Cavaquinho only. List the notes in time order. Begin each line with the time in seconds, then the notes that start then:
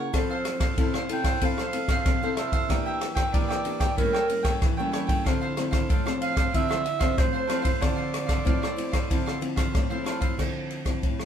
Already playing: C#5 F#5
0.00 A#4
0.14 E4 A4 C5 F5
0.30 A4 C5 F5
0.61 A4 C5 F5
0.79 E4 A4 C5 F5
0.95 A4 C5 F5
1.25 A4 C5 F5
1.41 E4 A4 C5 F5
1.59 A4 C5 F5
1.74 muted cavaquinho stroke
1.90 A4 C5 F5
2.23 A4 C5 F5
2.37 E4 A4 C5 F5
2.53 A4 C5 F5
2.69 D4 A#4 E5 G5
2.86 A#4 E5 G5
3.15 A#4 E5 G5
3.33 D4 A#4 E5 G5
3.48 A#4 E5 G5
3.80 A#4 E5 G5
3.97 E4 A4 C#5 G5
4.13 A4 C#5 G5
4.27 muted cavaquinho stroke
4.43 A4 C#5 G5
4.77 A4 C#5 G5
4.92 E4 A4 C#5 G5
5.07 A4 C#5 G5
5.24 D4 A4 C5 F5
5.41 A4 C5 F5
5.71 A4 C5 F5
5.89 D4 A4 C5 F5
6.06 A4 C5 F5
6.36 A4 C5 F5
6.52 D4 A4 C5 F5
6.69 A4 C5 F5
6.84 muted cavaquinho stroke
6.99 A4 C5 F5
7.33 A4 C5 F5
7.47 D4 A4 C5 F5
7.62 A4 C5 F5
7.80 D4 A4 C5 F5
7.96 A4 C5 F5
8.27 A4 C5 F5
8.45 D4 A4 C5 F5
8.62 A4 C5 F5
8.92 A4 C5 F5
9.10 D4 A4 C5 F5
9.26 A4 C5 F5
9.42 muted cavaquinho stroke
9.56 A4 C5 F5
9.90 A4 C5 F5
10.04 D4 A4 C5 F5
10.20 A4 C5 F5